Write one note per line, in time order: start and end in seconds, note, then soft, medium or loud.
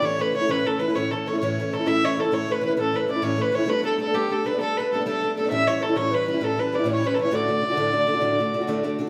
0.01 0.19 A2 medium
0.01 0.17 E3 medium
0.01 0.18 A3 medium
0.01 0.19 C#4 medium
0.01 0.20 E4 medium
0.01 0.22 C#5 medium
0.06 0.22 C#5 medium
0.19 0.32 E3 medium
0.19 0.34 A3 medium
0.19 0.34 C#4 medium
0.19 0.35 E4 medium
0.19 0.36 B4 medium
0.19 0.34 B4 medium
0.33 0.42 E3 medium
0.33 0.42 A3 soft
0.33 0.41 C#4 soft
0.33 0.40 E4 medium
0.33 0.52 C#5 medium
0.41 0.48 A3 soft
0.41 0.48 C#4 soft
0.41 0.48 E4 medium
0.48 0.66 A2 medium
0.48 0.64 E3 medium
0.48 0.64 A3 medium
0.48 0.65 C#4 medium
0.48 0.66 E4 medium
0.48 0.64 B4 medium
0.48 0.68 B4 loud
0.64 0.77 E3 soft
0.64 0.78 A3 soft
0.64 0.79 C#4 medium
0.64 0.80 E4 medium
0.64 0.84 A4 medium
0.64 0.81 A4 medium
0.64 0.67 B4 medium
0.78 0.87 E3 medium
0.78 0.88 A3 medium
0.78 0.88 C#4 medium
0.78 0.86 E4 medium
0.78 0.96 B4 medium
0.82 0.95 B4 medium
0.87 0.95 A3 soft
0.87 0.95 C#4 soft
0.87 0.95 E4 soft
0.95 1.12 A2 medium
0.95 1.10 E3 medium
0.95 1.11 A3 medium
0.95 1.12 C#4 medium
0.95 1.12 E4 medium
0.95 1.13 C#5 medium
0.95 1.11 C#5 medium
1.11 1.25 E3 medium
1.11 1.26 A3 medium
1.11 1.26 C#4 medium
1.11 1.27 E4 medium
1.11 1.29 A4 medium
1.25 1.34 E3 medium
1.25 1.34 A3 medium
1.25 1.34 C#4 medium
1.25 1.32 E4 medium
1.25 1.40 C#5 medium
1.25 1.39 C#5 medium
1.33 1.42 A3 soft
1.33 1.42 C#4 soft
1.33 1.41 E4 medium
1.39 1.58 A2 medium
1.39 1.58 E3 medium
1.39 1.59 A3 medium
1.39 1.59 C#4 medium
1.39 1.59 E4 medium
1.39 1.75 C#5 medium
1.39 1.70 C#5 medium
1.59 1.72 E3 medium
1.59 1.72 A3 medium
1.59 1.73 C#4 medium
1.59 1.74 E4 medium
1.72 1.80 E3 medium
1.72 1.80 A3 medium
1.72 1.80 C#4 medium
1.72 1.78 E4 medium
1.72 1.78 A4 medium
1.72 1.88 A4 medium
1.79 1.86 A3 soft
1.79 1.86 C#4 soft
1.79 1.86 E4 medium
1.86 2.03 A2 medium
1.86 2.02 E3 medium
1.86 2.02 A3 medium
1.86 2.03 C#4 medium
1.86 2.03 E4 medium
1.86 2.06 E5 loud
1.86 2.21 E5 medium
2.03 2.16 E3 medium
2.03 2.16 A3 medium
2.03 2.17 C#4 medium
2.03 2.18 E4 medium
2.03 2.21 C#5 medium
2.17 2.25 E3 medium
2.17 2.25 A3 medium
2.17 2.23 C#4 medium
2.17 2.23 E4 medium
2.17 2.35 A4 medium
2.24 2.31 A3 soft
2.24 2.32 C#4 medium
2.24 2.32 E4 soft
2.31 2.48 A2 medium
2.31 2.46 E3 medium
2.31 2.47 A3 medium
2.31 2.48 C#4 medium
2.31 2.48 E4 medium
2.31 2.53 C#5 medium
2.31 2.49 C#5 medium
2.47 2.60 E3 medium
2.47 2.60 A3 medium
2.47 2.62 C#4 medium
2.47 2.62 E4 medium
2.47 2.63 B4 medium
2.47 2.64 B4 medium
2.61 2.69 E3 medium
2.61 2.69 A3 medium
2.61 2.69 C#4 medium
2.61 2.67 E4 medium
2.65 2.77 E4 medium
2.65 2.83 B4 medium
2.65 2.72 B4 medium
2.70 2.76 A3 soft
2.70 2.76 C#4 medium
2.77 2.94 A2 medium
2.77 2.91 E3 medium
2.77 2.93 A3 medium
2.77 2.93 C#4 medium
2.77 2.94 E4 medium
2.77 2.97 A4 medium
2.81 2.96 A4 medium
2.92 3.06 E3 soft
2.92 3.07 A3 medium
2.92 3.08 C#4 medium
2.92 3.09 E4 medium
2.92 3.09 B4 medium
2.97 3.12 B4 medium
3.07 3.15 E3 soft
3.07 3.16 A3 medium
3.07 3.16 C#4 medium
3.07 3.15 E4 medium
3.07 3.24 D5 medium
3.07 3.25 D5 medium
3.16 3.22 A3 soft
3.16 3.22 C#4 soft
3.16 3.22 E4 medium
3.22 3.39 A2 medium
3.22 3.35 E3 medium
3.22 3.36 A3 medium
3.22 3.37 C#4 medium
3.22 3.38 E4 medium
3.22 3.43 C#5 medium
3.36 3.51 E3 medium
3.36 3.51 A3 medium
3.36 3.51 C#4 medium
3.36 3.53 E4 medium
3.41 3.56 B4 medium
3.41 3.57 B4 medium
3.52 3.60 E3 medium
3.52 3.59 A3 medium
3.52 3.58 C#4 medium
3.52 3.57 E4 medium
3.52 3.71 C#5 medium
3.52 3.69 C#5 medium
3.58 3.65 A3 soft
3.58 3.67 C#4 soft
3.58 3.67 E4 medium
3.66 3.81 G3 medium
3.66 3.82 A3 medium
3.66 3.82 B3 medium
3.66 3.84 D4 medium
3.70 3.84 B4 loud
3.70 3.85 B4 medium
3.82 3.96 G3 medium
3.82 3.98 A3 medium
3.82 3.98 B3 medium
3.82 3.99 D4 medium
3.82 3.99 A4 medium
3.98 4.06 G3 medium
3.98 4.06 A3 medium
3.98 4.07 B3 medium
3.98 4.06 D4 medium
3.98 4.16 A4 medium
3.98 4.17 A4 medium
4.07 4.13 A3 soft
4.07 4.14 B3 soft
4.07 4.14 D4 medium
4.14 4.28 G3 medium
4.14 4.29 A3 medium
4.14 4.30 B3 medium
4.14 4.30 D4 medium
4.14 4.34 G4 medium
4.29 4.43 G3 medium
4.29 4.44 A3 soft
4.29 4.45 B3 medium
4.29 4.46 D4 medium
4.29 4.47 A4 medium
4.33 4.46 A4 medium
4.44 4.52 G3 medium
4.44 4.52 A3 medium
4.44 4.53 B3 medium
4.44 4.52 D4 medium
4.44 4.60 B4 medium
4.48 4.60 B4 medium
4.53 4.60 A3 soft
4.53 4.60 B3 soft
4.53 4.60 D4 medium
4.60 4.76 G3 medium
4.60 4.77 A3 medium
4.60 4.77 B3 medium
4.60 4.77 D4 medium
4.60 4.79 A4 medium
4.60 4.78 A4 medium
4.77 4.91 G3 medium
4.77 4.92 A3 medium
4.77 4.93 B3 medium
4.77 4.93 D4 medium
4.77 5.05 B4 medium
4.77 4.91 B4 medium
4.92 4.99 G3 medium
4.92 4.99 A3 medium
4.92 5.00 B3 medium
4.92 4.99 D4 medium
4.92 5.05 A4 medium
5.00 5.05 A3 soft
5.00 5.05 B3 soft
5.00 5.06 D4 soft
5.05 5.20 G3 medium
5.05 5.21 A3 medium
5.05 5.22 B3 medium
5.05 5.23 D4 medium
5.05 5.34 A4 medium
5.05 5.35 A4 medium
5.21 5.36 G3 medium
5.21 5.36 A3 medium
5.21 5.37 B3 medium
5.21 5.37 D4 medium
5.35 5.44 G3 medium
5.35 5.44 A3 medium
5.35 5.52 A4 medium
5.35 5.50 A4 medium
5.39 5.45 B3 medium
5.39 5.43 D4 medium
5.45 5.52 A3 soft
5.45 5.52 B3 medium
5.45 5.51 D4 medium
5.50 5.67 A2 medium
5.50 5.65 E3 medium
5.50 5.67 G3 medium
5.50 5.67 C#4 medium
5.50 5.68 E4 medium
5.50 5.69 E5 loud
5.50 5.70 E5 medium
5.66 5.81 E3 medium
5.66 5.81 G3 medium
5.66 5.82 E4 medium
5.66 5.84 C#5 medium
5.66 5.83 C#5 medium
5.81 5.89 E3 soft
5.81 5.89 G3 soft
5.81 5.89 C#4 medium
5.81 5.88 E4 medium
5.81 5.98 A4 medium
5.89 5.95 G3 soft
5.89 5.96 C#4 soft
5.89 5.96 E4 medium
5.96 6.12 A2 medium
5.96 6.11 E3 medium
5.96 6.12 G3 medium
5.96 6.13 C#4 medium
5.96 6.13 E4 medium
5.96 6.16 C#5 medium
5.96 6.13 C#5 medium
6.11 6.25 E3 medium
6.11 6.27 G3 medium
6.11 6.27 C#4 medium
6.11 6.27 E4 medium
6.11 6.44 B4 medium
6.11 6.28 B4 medium
6.26 6.34 E3 medium
6.26 6.34 G3 medium
6.26 6.33 C#4 medium
6.26 6.32 E4 medium
6.26 6.46 B4 medium
6.33 6.40 G3 soft
6.33 6.41 C#4 soft
6.33 6.41 E4 medium
6.41 6.57 A2 medium
6.41 6.56 E3 medium
6.41 6.57 G3 medium
6.41 6.58 C#4 medium
6.41 6.58 E4 medium
6.41 6.61 A4 medium
6.57 6.71 E3 medium
6.57 6.72 G3 medium
6.57 6.72 C#4 medium
6.57 6.73 E4 medium
6.57 6.76 B4 medium
6.57 6.90 B4 medium
6.72 6.79 E3 medium
6.72 6.80 G3 medium
6.72 6.79 C#4 medium
6.72 6.78 E4 medium
6.72 6.88 D5 medium
6.79 6.85 G3 soft
6.79 6.85 C#4 soft
6.79 6.86 E4 soft
6.84 7.02 A2 medium
6.84 7.01 E3 medium
6.84 7.03 G3 medium
6.84 7.03 C#4 medium
6.84 7.03 E4 medium
6.88 7.04 C#5 medium
6.88 7.08 C#5 medium
7.03 7.15 E3 medium
7.03 7.16 G3 medium
7.03 7.17 C#4 medium
7.03 7.18 E4 medium
7.03 7.16 B4 medium
7.03 7.10 C#5 medium
7.09 7.36 B4 medium
7.14 7.24 E3 medium
7.14 7.25 G3 medium
7.14 7.20 A4 medium
7.19 7.24 C#4 medium
7.19 7.23 E4 medium
7.19 7.37 C#5 medium
7.24 7.32 G3 soft
7.24 7.32 C#4 medium
7.24 7.32 E4 medium
7.31 7.48 D2 medium
7.31 7.48 A2 medium
7.31 7.47 D3 medium
7.31 7.47 A3 medium
7.31 7.48 D4 medium
7.31 7.49 F#4 medium
7.31 8.86 D5 medium
7.35 8.87 D5 medium
7.48 7.60 D3 medium
7.48 7.61 A3 medium
7.48 7.62 D4 medium
7.48 7.63 F#4 medium
7.61 7.70 D3 medium
7.61 7.70 A3 medium
7.61 7.69 D4 medium
7.61 7.69 F#4 medium
7.70 7.76 D3 soft
7.70 7.77 A3 soft
7.70 7.77 D4 medium
7.70 7.76 F#4 medium
7.76 7.93 D2 medium
7.76 7.94 A2 medium
7.76 7.90 D3 medium
7.76 7.91 A3 medium
7.76 7.92 D4 medium
7.76 7.93 F#4 medium
7.92 8.05 D3 medium
7.92 8.06 A3 medium
7.92 8.07 D4 medium
7.92 8.08 F#4 medium
8.07 8.15 D3 medium
8.07 8.14 A3 medium
8.07 8.13 D4 medium
8.07 8.12 F#4 medium
8.13 8.20 D3 soft
8.13 8.21 A3 medium
8.13 8.21 D4 medium
8.13 8.22 F#4 medium
8.20 8.38 D2 medium
8.20 8.39 A2 medium
8.20 8.37 D3 medium
8.20 8.39 A3 medium
8.20 8.39 D4 medium
8.20 8.39 F#4 medium
8.39 8.52 D3 medium
8.39 8.53 A3 medium
8.39 8.54 D4 medium
8.39 8.54 F#4 medium
8.53 8.61 D3 soft
8.53 8.61 A3 medium
8.53 8.60 D4 medium
8.53 8.59 F#4 medium
8.61 8.67 D3 soft
8.61 8.67 A3 soft
8.61 8.67 D4 medium
8.61 8.68 F#4 medium
8.67 8.84 D2 medium
8.67 8.84 A2 medium
8.67 8.82 D3 medium
8.67 8.83 A3 medium
8.67 8.83 D4 medium
8.67 8.84 F#4 medium
8.83 8.97 D3 medium
8.83 8.98 A3 medium
8.83 8.99 D4 medium
8.83 9.00 F#4 medium
8.98 9.06 D3 medium
8.98 9.07 A3 medium
8.98 9.06 D4 medium
8.98 9.06 F#4 medium